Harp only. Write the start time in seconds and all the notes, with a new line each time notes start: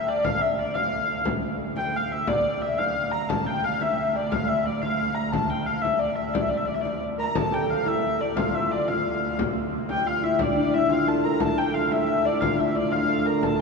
7.18 A#4
7.35 A4
7.52 G4
7.86 E4
8.37 F4
8.88 F4
9.90 G4
10.05 F4
10.22 E4
10.40 D4
10.56 D4
10.74 E4
10.90 F4
11.08 A4
11.25 A#4
11.41 A4
11.75 F4
11.92 E4
12.25 D4
12.43 F4
12.59 E4
12.76 D4
12.94 F4
13.09 A4
13.26 A#4
13.44 A4